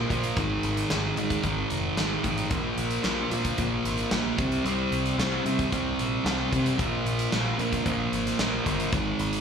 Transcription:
Already playing: A#3
0.10 A#2 F3 A#3, kick, closed hi-hat
0.24 closed hi-hat
0.37 G#1 G#2 D#3 G#3, kick, closed hi-hat
0.63 G#1, closed hi-hat
0.77 closed hi-hat
0.90 G#1 G#2 D#3 G#3, snare, closed hi-hat
1.17 G#2 D#3 G#3, closed hi-hat
1.30 kick, closed hi-hat
1.43 G#1 G#2 D#3 G#3, kick, closed hi-hat
1.70 F1, closed hi-hat
1.97 G#1 G#2 D#3 G#3, snare, closed hi-hat
2.23 A1 G#2 D#3 G#3, kick, closed hi-hat
2.38 closed hi-hat
2.50 A#1 A#2 F3 A#3, kick, closed hi-hat
2.78 A#1, closed hi-hat
2.90 closed hi-hat
3.03 A#1 A#2 F3 A#3, snare, closed hi-hat
3.31 A#2 F3 A#3, closed hi-hat
3.44 kick, closed hi-hat
3.57 A#1 A#2 F3 A#3, kick, closed hi-hat
3.85 G#1, closed hi-hat
3.98 closed hi-hat
4.11 A#1 A#2 F3 A#3, snare, closed hi-hat
4.38 C2 C3 G3 C4, kick, closed hi-hat
4.52 closed hi-hat
4.64 C2 C3 G3 C4, closed hi-hat
4.91 C2, closed hi-hat
5.06 closed hi-hat
5.18 C2 C3 G3 C4, snare, closed hi-hat
5.45 C3 G3 C4, closed hi-hat
5.59 kick, closed hi-hat
5.71 C2 C3 G3 C4, kick, closed hi-hat
5.98 A#1, closed hi-hat
6.25 C2 C3 G3 C4, snare, closed hi-hat
6.51 C3 G3 C4, kick, closed hi-hat
6.66 closed hi-hat
6.78 A#1 A#2 F3 A#3, kick, closed hi-hat
7.06 A#1, closed hi-hat
7.19 closed hi-hat
7.31 A#1 A#2 F3 A#3, snare, closed hi-hat
7.58 A#2 F3 A#3, closed hi-hat
7.73 kick, closed hi-hat
7.85 A#1 A#2 F3 A#3, kick, closed hi-hat
8.13 G#1, closed hi-hat
8.27 snare, closed hi-hat
8.39 A#1 A#2 F3 A#3, snare, closed hi-hat
8.65 G1 A#2 F3 A#3, kick, closed hi-hat
8.80 closed hi-hat
8.92 G#1 G#2 D#3 G#3, kick, closed hi-hat
9.19 G#1, closed hi-hat
9.33 closed hi-hat

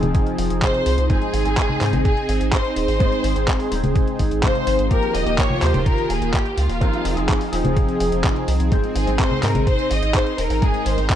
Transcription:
Already playing: F3 C4 D#4 G#4
0.03 D#1, closed hi-hat, high conga
0.15 kick, closed hi-hat
0.27 closed hi-hat
0.38 F1, open hi-hat
0.50 F1, closed hi-hat
0.62 C5 C6, kick, clap, closed hi-hat, high conga
0.74 closed hi-hat
0.86 C2, open hi-hat
0.98 C2, closed hi-hat
1.09 G#2 G#3 C4 D#4 G#4 C5 G#5, kick, closed hi-hat
1.22 closed hi-hat
1.34 G#1, open hi-hat
1.45 G#1 G#2 G#3 C4 D#4 C5, closed hi-hat
1.57 kick, clap, closed hi-hat
1.69 high conga
1.81 G#2 G#3 C4 D#4 C5, clap, open hi-hat
1.93 G#1, closed hi-hat, high conga
2.05 G#4 G#5, kick, closed hi-hat
2.17 closed hi-hat
2.29 G#1, open hi-hat
2.41 G#1, closed hi-hat
2.53 C5 C6, kick, clap, closed hi-hat
2.65 closed hi-hat
2.76 D#1 C5 C6, open hi-hat
2.88 G#1, open hi-hat
3.00 G#2 G#3 C4 D#4 D#5, kick, closed hi-hat
3.12 closed hi-hat
3.24 G#1, open hi-hat
3.36 G#1 G#2 G#3 C4 D#4 C5, closed hi-hat
3.48 kick, clap, closed hi-hat
3.60 open hi-hat
3.71 D#1 G#2 G#3 C4 D#4 C5, open hi-hat
3.84 D#1, closed hi-hat, high conga
3.96 kick, closed hi-hat
4.08 closed hi-hat
4.19 G#1, kick, open hi-hat
4.31 G#1, closed hi-hat
4.43 G#2 G#3 C4 D#4 C5 F5 C6, kick, clap, closed hi-hat, high conga
4.55 closed hi-hat
4.67 G#1, open hi-hat
4.79 G#1, closed hi-hat
4.90 D#3 F3 A#3 D#4 F4 G4 A#4 A#5, kick, closed hi-hat
5.03 closed hi-hat
5.14 D#1 D#5 D#6, open hi-hat
5.26 D#1 F3 A#3 D#4 G4, closed hi-hat
5.38 C#5 C#6, kick, clap, closed hi-hat
5.50 high conga
5.62 D#2 F3 A#3 D#4 G4 C5 C6, clap, open hi-hat
5.74 D#1, closed hi-hat, high conga
5.86 A#4 A#5, kick, closed hi-hat
5.98 closed hi-hat
6.10 D#1 G#4 G#5, open hi-hat
6.22 D#1, closed hi-hat
6.33 G4 G5, kick, clap, closed hi-hat
6.46 closed hi-hat
6.57 C#2 F4 F5, open hi-hat
6.69 D#1, open hi-hat
6.81 F3 C4 D#4 G#4 A#4, kick, closed hi-hat
6.93 closed hi-hat
7.05 F1, open hi-hat
7.17 F1 F3 C4 D#4 G#4, closed hi-hat
7.29 kick, clap, closed hi-hat
7.41 open hi-hat
7.52 D#1 F3 C4 D#4 G#4, open hi-hat
7.65 D#1, closed hi-hat, high conga
7.77 kick, closed hi-hat
7.89 closed hi-hat
8.00 F1, open hi-hat
8.12 F1, closed hi-hat
8.24 kick, clap, closed hi-hat, high conga
8.36 closed hi-hat
8.48 C2, open hi-hat
8.60 C2, closed hi-hat
8.71 G#2 G#3 C4 D#4 C5, kick, closed hi-hat
8.84 closed hi-hat
8.95 G#1 G#4 G#5, open hi-hat
9.07 G#1 G#2 G#3 C4 D#4 C5, closed hi-hat
9.19 C5 C6, kick, clap, closed hi-hat
9.31 high conga
9.43 G#2 G#3 C4 D#4 A#4 C5 A#5, clap, open hi-hat
9.55 G#1, closed hi-hat, high conga
9.67 C5 C6, kick, closed hi-hat
9.79 closed hi-hat
9.91 G#1 D#5 D#6, open hi-hat
10.03 G#1, closed hi-hat
10.15 C5 C6, kick, clap, closed hi-hat
10.26 closed hi-hat
10.38 D#1 A#4 A#5, open hi-hat
10.50 G#1, open hi-hat
10.62 G#2 G#3 C4 D#4 G#4 A#4 D#5 G#5, kick, closed hi-hat
10.74 closed hi-hat
10.86 G#1 C5 C6, open hi-hat
10.97 G#1 G#2 G#3 C4 D#4 C5, closed hi-hat
11.10 A#4 A#5, kick, clap, closed hi-hat

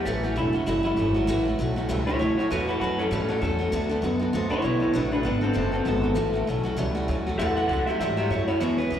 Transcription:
0.05 A1 A2 E3 F#3 A3 C#4 F#4 A4
0.23 A2 E3 F#3 A3 C#4 F#4 G4
0.36 E1 A2 F#3 A3 C#4 E4 F#4
0.53 A2 F#3 A3 C#4 F#4
0.66 F#1 A2 E3 F#3 G3 A3 C#4 E4 F#4
0.83 A2 F#3 G3 A3 C#4 E4 F#4
0.97 G#1 A2 F#3 A3 C#4 F#4
1.14 A2 F#3 A3 C#4 F#4
1.27 A1 A2 E3 F#3 A3 C#4 F#4
1.45 A2 E3 F#3 A3 C#4 F#4
1.58 B1 A2 F#3 A3 C#4 F#4
1.76 A2 F#3 A3 C#4 F#4
1.89 C#2 A2 E3 F#3 G3 A3 C#4 F#4
2.06 A2 G3 A3 C#4 E4 F#4 C#5
2.10 F#3
2.19 D2 A2 F#3 A3 C#4 E4 F#4 C#5
2.37 A2 F#3 C#4 E4 F#4 C#5, muted upright bass stroke
2.41 F#3 A3
2.50 E2 A2 E3 F#3 A3 C#4 F#4 B4
2.68 A2 E3 F#3 A3 C#4 F#4 B4
2.80 F#2 A2 F#3 A3 C#4 F#4 B4
2.84 F#4
2.98 A2 F#3 A3 C#4 F#4 A4
3.11 A2 E3 F#3 G3 A3 C#4 F#4 A4
3.29 A2 F#3 G3 A3 C#4 F#4 A4
3.41 E2 A2 F#3 A3 C#4 F#4 A4
3.59 A2 F#3 A3 C#4 F#4
3.72 D2 D3 F#3 A3 B3 F#4 A4
3.89 D3 A3 B3 F#4 A4
4.02 F#2 D3 F#3 B3 F#4 A4
4.19 D3 B3 F#4 A4
4.33 D2 D3 F#3 B3 C4 F#4 A4
4.50 D3 B3 C4 E4 F#4 A4 C#5, muted upright bass stroke
4.62 B1 D3 F#3 B3 E4 F#4 A4 C#5
4.80 D3 B3 E4 F#4 A4 C#5
4.93 A1 D3 F#3 A3 B3 D4 F#4 A4 B4
5.12 D3 A3 B3 D4 F#4 A4 B4
5.23 G#1 D3 F#3 B3 D4 F#4 A4 B4
5.41 D3 B3 C4 F#4 A4
5.53 F#1 D3 F#3 B3 C4 F#4 A4
5.72 D3 B3 C4 F#4 A4
5.85 G#1 D3 F#3 B3 F#4 A4
6.02 D3 B3 F#4 A4
6.15 A1 A2 E3 F#3 A3 C#4 F#4
6.33 A2 E3 F#3 A3 C#4 F#4
6.46 B1 A2 F#3 A3 C#4
6.50 F#4
6.63 A2 F#3 A3 C#4 F#4
6.77 C#2 A2 E3 F#3 G3 A3 C#4 F#4
6.95 A2 F#3 G3 A3 C#4 F#4
7.08 D2 A2 F#3 A3 C#4 F#4
7.26 A2 F#3 A3 C#4 F#4
7.38 E2 A2 E3 F#3 A3 C#4 F#4 A4 F#5
7.56 A2 E3 A3 C#4 F#4 A4 F#5
7.60 F#3
7.68 C#2 A2 F#3 A3 A4 F#5
7.72 C#4 F#4
7.86 A2 F#3 C#4 F#4 G4 E5, muted upright bass stroke
7.90 F#3 A3
7.99 G#2 A2 E3 F#3 G3 A3 C#4 G4 E5
8.03 F#4
8.17 A2 F#3 G3 A3 C#4 F#4 G4 E5
8.30 F#2 A2 F#3 A3 C#4 E4 F#4 C#5
8.47 A2 F#3 A3 C#4 E4 F#4 C#5
8.60 E2 B2 E3 G#3 B3 C#4 E4 G#4 C#5
8.78 E2 B2 B3 C#4 G#4 B4
8.90 C#2 E2 C#3 G#3 B3 C#4 G#4

